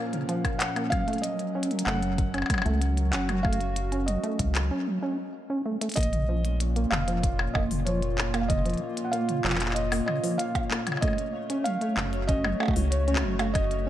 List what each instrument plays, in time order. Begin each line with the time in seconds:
Already playing: analog synth pad A#2 F3 A#3 C#4, acid bass A#3, synth texture C#4 A#4, felt piano F5
0.13 acid bass C#3, closed hi-hat
0.29 acid bass F3, closed hi-hat
0.45 kick, closed hi-hat, percussion blips
0.59 felt piano F#5, clap, closed hi-hat
0.76 acid bass A#3, closed hi-hat, percussion blips
0.90 acid bass F#3, analog synth pad F#3, felt piano F5, kick, closed hi-hat, percussion blips
1.08 acid bass A3, closed hi-hat
1.13 closed hi-hat
1.18 felt piano D#5, closed hi-hat
1.24 closed hi-hat
1.39 closed hi-hat
1.55 acid bass C#4
1.63 closed hi-hat
1.71 acid bass F#3, closed hi-hat
1.79 closed hi-hat
1.85 analog synth bass F#1, acid bass A3, felt piano F#5, clap
2.02 closed hi-hat
2.18 kick, closed hi-hat
2.34 acid bass C#4, closed hi-hat, percussion blips
2.38 percussion blips
2.42 percussion blips
2.46 acid bass F#3, kick, closed hi-hat, percussion blips
2.50 percussion blips
2.54 percussion blips
2.58 percussion blips
2.62 analog synth bass C#2, acid bass A3, closed hi-hat, percussion blips
2.82 closed hi-hat
2.87 analog synth pad F#4
2.97 closed hi-hat
3.11 analog synth bass F#1, acid bass C#4, felt piano F#5, clap, closed hi-hat
3.29 acid bass F#3, closed hi-hat, percussion blips
3.43 acid bass A3, felt piano F5, kick, percussion blips
3.53 closed hi-hat
3.61 closed hi-hat
3.76 closed hi-hat
3.92 acid bass C#4, closed hi-hat
4.06 acid bass F#3, felt piano D#5, closed hi-hat
4.24 acid bass A3, closed hi-hat
4.39 analog synth bass C#2, kick, closed hi-hat
4.55 clap, closed hi-hat
4.71 acid bass C#4
4.87 acid bass F#3
5.03 acid bass C#4
5.50 acid bass C#4
5.66 acid bass A3
5.81 acid bass A3, closed hi-hat
5.89 closed hi-hat
5.92 closed hi-hat
5.94 felt piano D#5, closed hi-hat
5.96 analog synth bass A#1, analog synth pad A#2, acid bass A#3, synth texture C#4 C#5, kick, closed hi-hat
5.98 closed hi-hat
6.01 closed hi-hat
6.03 closed hi-hat
6.13 acid bass C#3, closed hi-hat
6.29 acid bass F3
6.34 analog synth pad A#3
6.45 closed hi-hat
6.60 analog synth pad F4, closed hi-hat
6.76 acid bass A#3, closed hi-hat
6.90 analog synth bass F1, acid bass C#3, felt piano F5, clap
7.08 acid bass F3, closed hi-hat
7.23 kick, closed hi-hat
7.39 percussion blips
7.54 analog synth bass F1, acid bass A#3, felt piano D#5, kick, percussion blips
7.71 acid bass C#3, open hi-hat
7.85 acid bass F3, felt piano C#5, closed hi-hat
8.02 closed hi-hat
8.18 clap
8.34 acid bass A#3, closed hi-hat, percussion blips
8.41 felt piano F5
8.48 acid bass C#3, felt piano D#5, kick, closed hi-hat
8.66 acid bass F3, closed hi-hat
8.70 closed hi-hat
8.74 closed hi-hat
8.77 closed hi-hat
8.97 closed hi-hat
9.05 felt piano F#5
9.12 acid bass A#3, felt piano F5, closed hi-hat
9.29 acid bass C#3, closed hi-hat
9.45 analog synth bass F1, acid bass F3, clap
9.50 clap
9.55 clap
9.60 clap, closed hi-hat
9.66 clap
9.71 felt piano D#5, clap
9.76 closed hi-hat
9.92 acid bass A#3, open hi-hat, percussion blips
10.06 acid bass C#3, felt piano D#5, percussion blips
10.23 acid bass F3, open hi-hat
10.38 felt piano F5, closed hi-hat
10.55 kick, closed hi-hat, percussion blips
10.71 acid bass A#3, clap
10.87 acid bass C#3, closed hi-hat, percussion blips
10.92 percussion blips
10.97 felt piano D#5, percussion blips
11.02 analog synth pad A3, acid bass A3, kick, closed hi-hat, percussion blips
11.08 percussion blips
11.13 percussion blips
11.18 closed hi-hat
11.50 acid bass C#4, closed hi-hat
11.64 acid bass F#3, felt piano F5, closed hi-hat
11.81 acid bass A3, analog synth pad F#4, closed hi-hat
11.97 analog synth bass F#1, clap
12.13 closed hi-hat
12.27 acid bass C#4, felt piano D#5, kick, closed hi-hat
12.44 acid bass F#3, percussion blips
12.60 acid bass A3, percussion blips
12.63 percussion blips
12.66 percussion blips
12.68 kick, percussion blips
12.71 percussion blips
12.73 analog synth bass C#2, open hi-hat, percussion blips
12.91 felt piano C#5, closed hi-hat
13.08 acid bass C#4, closed hi-hat
13.16 clap
13.23 analog synth bass F#1, acid bass F#3
13.39 acid bass A3, closed hi-hat, percussion blips
13.54 felt piano D#5, kick, closed hi-hat, percussion blips
13.71 closed hi-hat